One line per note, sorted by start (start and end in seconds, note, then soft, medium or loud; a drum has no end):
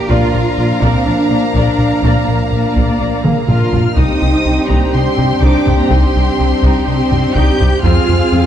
0.09 0.18 A#1 medium
0.09 0.24 A#2 medium
0.09 3.68 F3 medium
0.09 3.93 A#3 medium
0.09 3.68 D4 medium
0.09 3.93 D4 medium
0.09 0.82 F4 medium
0.09 0.32 A#4 medium
0.09 3.93 A#4 medium
0.09 0.32 D5 medium
0.09 3.93 F5 medium
0.09 3.73 F5 medium
0.09 3.73 A#5 medium
0.09 taiko medium
0.34 0.42 A#1 medium
0.34 0.48 A#2 medium
0.34 0.42 A#4 soft
0.34 0.42 D5 soft
0.58 0.66 A#1 medium
0.58 0.73 A#2 medium
0.58 0.66 A#4 medium
0.58 0.66 D5 medium
0.82 0.90 A#1 medium
0.82 0.96 A#2 medium
0.82 1.06 C4 medium
0.82 1.04 A#4 medium
0.82 1.04 D5 medium
0.82 taiko medium
1.06 1.14 A#1 soft
1.06 1.21 A#3 medium
1.06 1.54 D4 medium
1.06 1.14 A#4 soft
1.06 1.14 D5 medium
1.30 1.38 A#1 soft
1.30 1.45 A#3 medium
1.30 1.38 A#4 medium
1.30 1.38 D5 soft
1.54 1.62 A#1 medium
1.54 1.69 A#2 medium
1.54 2.02 D4 medium
1.54 1.78 A#4 medium
1.54 1.78 D5 medium
1.54 taiko medium
1.78 1.86 A#1 soft
1.78 1.93 A#2 medium
1.78 1.87 A#4 soft
1.78 1.87 D5 soft
2.02 2.10 A#1 medium
2.02 2.18 A#2 medium
2.02 3.48 A#3 medium
2.02 2.26 A#4 medium
2.02 2.26 D5 medium
2.02 taiko medium
2.27 2.35 A#1 soft
2.27 2.42 A#2 medium
2.27 2.36 A#4 soft
2.27 2.36 D5 soft
2.51 2.59 A#1 soft
2.51 2.67 A#2 medium
2.51 3.21 D5 medium
2.76 2.84 A#1 medium
2.76 2.91 A#2 medium
2.76 taiko medium
3.00 3.08 A#1 soft
3.00 3.15 A#3 medium
3.24 3.32 A#1 soft
3.24 3.39 A#3 medium
3.24 3.48 G#4 medium
3.24 taiko mid medium
3.47 3.55 A#1 medium
3.47 3.63 A#2 medium
3.47 3.93 F4 medium
3.47 3.96 A#4 soft
3.47 3.93 F6 medium
3.47 taiko low-mid medium
3.72 3.80 A#1 soft
3.72 3.88 A#2 medium
3.72 taiko low medium
3.95 4.04 C2 medium
3.95 4.12 C2 medium
3.95 7.80 C3 medium
3.95 7.80 G3 medium
3.95 7.79 C4 medium
3.95 7.79 D4 medium
3.95 4.19 D#4 medium
3.95 4.68 D#4 medium
3.95 7.79 G4 medium
3.95 7.80 G4 medium
3.95 7.79 C5 medium
3.95 7.80 G5 medium
3.95 4.69 D#6 loud
3.95 taiko medium
4.20 4.29 C2 soft
4.20 4.36 C2 medium
4.20 4.28 D#4 soft
4.45 4.53 C2 medium
4.45 4.60 C2 medium
4.45 4.53 D#4 medium
4.68 4.77 C2 medium
4.68 4.84 C2 medium
4.68 4.93 A#3 medium
4.68 4.91 D#4 medium
4.68 4.93 A#5 medium
4.68 taiko medium
4.92 5.01 C2 medium
4.92 5.09 C3 medium
4.92 5.42 C4 medium
4.92 5.00 D#4 medium
4.92 5.41 C6 medium
5.17 5.25 C2 soft
5.17 5.33 C3 medium
5.17 5.25 D#4 medium
5.17 taiko low medium
5.41 5.49 C2 medium
5.41 5.57 C2 medium
5.41 5.77 D4 medium
5.41 5.64 D#4 medium
5.41 5.78 D6 medium
5.41 taiko medium
5.65 5.73 C2 medium
5.65 5.82 C2 medium
5.65 5.73 D#4 medium
5.65 taiko low medium
5.77 5.89 A#3 medium
5.77 5.90 A#5 medium
5.89 5.98 C2 medium
5.89 6.06 C2 medium
5.89 6.85 C4 medium
5.89 6.12 D#4 medium
5.89 6.84 C6 medium
5.89 taiko medium
6.14 6.22 C2 medium
6.14 6.30 C2 medium
6.14 6.22 D#4 soft
6.38 6.46 C2 medium
6.38 6.54 C2 medium
6.38 6.46 D#4 medium
6.63 6.71 C2 medium
6.63 6.78 C2 medium
6.63 6.85 D#4 medium
6.63 taiko medium
6.85 6.95 C2 medium
6.85 7.02 C3 medium
6.85 7.34 C4 medium
6.85 6.96 D#4 medium
6.85 7.33 C6 medium
7.10 7.18 C2 medium
7.10 7.26 C3 medium
7.10 7.19 D#4 medium
7.10 taiko low medium
7.34 7.43 C2 medium
7.34 7.51 C2 medium
7.34 7.58 D#4 medium
7.34 7.83 G4 medium
7.34 7.83 G6 medium
7.34 taiko medium
7.59 7.67 C2 medium
7.59 7.75 C2 medium
7.59 7.69 D#4 medium
7.59 taiko low soft
7.82 7.91 F2 medium
7.82 8.46 C3 medium
7.82 8.46 G#3 medium
7.82 8.46 C4 medium
7.82 8.06 C4 medium
7.82 8.46 F4 medium
7.82 8.46 G#4 medium
7.82 8.46 C5 medium
7.82 8.46 F5 medium
7.82 8.46 F6 loud
7.82 taiko medium
7.86 8.00 F2 medium
8.08 8.16 F2 medium
8.08 8.23 F2 medium
8.08 8.16 C4 soft
8.32 8.40 F2 medium
8.32 8.46 F2 medium
8.32 8.40 C4 medium